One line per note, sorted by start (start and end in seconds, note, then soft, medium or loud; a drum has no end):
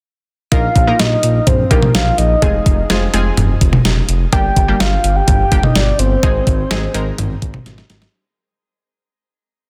0.52 0.68 A#1 loud
0.52 0.73 A#3 medium
0.52 0.73 D#4 medium
0.52 0.73 F4 medium
0.52 0.73 A#4 medium
0.52 1.01 F5 loud
0.52 kick loud
0.52 closed hi-hat medium
0.76 0.92 A#1 loud
0.76 kick medium
0.76 closed hi-hat medium
0.87 1.38 A#3 medium
0.87 1.38 D#4 medium
0.87 1.38 F4 medium
0.87 1.38 A#4 medium
0.99 1.16 A#1 medium
0.99 1.48 D#5 loud
0.99 snare loud
0.99 closed hi-hat medium
1.23 1.40 A#1 loud
1.23 closed hi-hat medium
1.47 1.64 A#1 loud
1.47 1.72 C5 loud
1.47 kick medium
1.47 closed hi-hat medium
1.47 mid tom medium
1.71 1.87 A#1 medium
1.71 2.14 A#3 medium
1.71 2.14 D#4 medium
1.71 2.14 F4 medium
1.71 2.14 G4 medium
1.71 1.94 A#4 medium
1.71 kick medium
1.71 closed hi-hat medium
1.82 mid tom medium
1.94 2.11 A#1 loud
1.94 2.20 F5 loud
1.94 snare loud
1.94 closed hi-hat medium
2.18 2.35 A#1 loud
2.18 3.13 D#5 loud
2.18 closed hi-hat medium
2.42 2.59 F1 loud
2.42 2.71 G#3 medium
2.42 2.71 C4 medium
2.42 2.71 F4 medium
2.42 2.71 G#4 medium
2.42 kick loud
2.42 closed hi-hat medium
2.66 2.83 F1 loud
2.66 kick medium
2.66 closed hi-hat medium
2.90 3.06 F1 loud
2.90 3.04 G#3 medium
2.90 3.04 C4 medium
2.90 3.04 F4 medium
2.90 3.04 G#4 loud
2.90 snare loud
2.90 closed hi-hat medium
3.13 3.30 F1 medium
3.13 3.71 G#3 medium
3.13 3.71 C4 medium
3.13 3.71 F4 medium
3.13 3.71 G#4 loud
3.13 closed hi-hat medium
3.37 3.54 F1 loud
3.37 closed hi-hat medium
3.37 mid tom medium
3.61 3.78 F1 loud
3.61 kick medium
3.61 closed hi-hat medium
3.73 mid tom medium
3.85 4.02 F1 loud
3.85 snare loud
3.85 closed hi-hat medium
4.09 4.25 F1 loud
4.09 closed hi-hat medium
4.32 4.49 G1 loud
4.32 4.54 G3 medium
4.32 4.54 A#3 medium
4.32 4.54 D4 medium
4.32 4.54 G4 medium
4.32 4.82 G5 loud
4.32 kick loud
4.32 closed hi-hat medium
4.56 4.73 G1 loud
4.56 kick medium
4.56 closed hi-hat medium
4.68 5.19 G3 medium
4.68 5.19 A#3 medium
4.68 5.19 D4 medium
4.68 5.19 G4 medium
4.80 4.97 G1 loud
4.80 5.18 F5 loud
4.80 snare loud
4.80 closed hi-hat medium
5.04 5.21 G1 loud
5.04 closed hi-hat medium
5.16 5.65 G5 loud
5.28 5.44 G1 loud
5.28 kick medium
5.28 closed hi-hat medium
5.28 mid tom medium
5.52 5.68 G1 loud
5.52 5.95 G3 medium
5.52 5.95 A#3 medium
5.52 5.95 D4 medium
5.52 5.95 G4 medium
5.52 kick medium
5.52 closed hi-hat medium
5.63 5.77 D#5 medium
5.63 mid tom medium
5.75 5.92 G1 loud
5.75 6.01 D5 loud
5.75 snare loud
5.75 closed hi-hat medium
5.99 6.16 G1 loud
5.99 7.66 C5 loud
5.99 closed hi-hat medium
6.23 6.40 G#1 loud
6.23 6.52 G#3 medium
6.23 6.52 C4 medium
6.23 6.52 D#4 medium
6.23 6.52 G#4 medium
6.23 kick loud
6.23 closed hi-hat medium
6.47 6.64 G#1 loud
6.47 kick medium
6.47 closed hi-hat medium
6.71 6.87 G#1 medium
6.71 6.85 G#3 medium
6.71 6.85 C4 medium
6.71 6.85 D#4 medium
6.71 6.85 G#4 loud
6.71 snare loud
6.71 closed hi-hat medium
6.94 7.11 G#1 loud
6.94 7.52 G#3 medium
6.94 7.52 C4 medium
6.94 7.52 D#4 medium
6.94 7.52 A#4 medium
6.94 closed hi-hat medium
7.18 7.35 G#1 loud
7.18 closed hi-hat medium
7.18 mid tom medium
7.42 7.59 G#1 loud
7.42 kick medium
7.42 closed hi-hat medium
7.54 mid tom medium
7.66 7.83 G#1 loud
7.66 snare medium
7.66 closed hi-hat medium
7.78 snare medium
7.90 8.06 G#1 loud
7.90 snare medium
7.90 closed hi-hat medium
8.02 snare medium